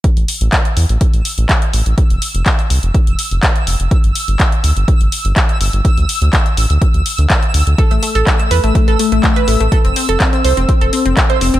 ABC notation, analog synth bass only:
X:1
M:4/4
L:1/16
Q:1/4=124
K:Am
V:1 name="Analog synth bass" clef=bass
z A,,, z A,,, z2 E,, A,,, z A,,, z A,,, z2 A,,, A,,, | z F,,, z F,,, z2 C,, F,,, z F,,, z F,,, z2 F,,, F,,, | z G,,, z G,,, z2 D,, G,,, z G,,, z G,,, z2 G,,, G,,, | z D,, z D,, z2 A,,, D,, z D,, z D,, z2 D,, D,, |
z A,,, z A,,, z2 E,, A,,, z A,,, z A,,, z2 A,,, A,,, | z F,,, z F,,, z2 C,, F,,, z F,,, z F,,, z2 F,,, F,,, |]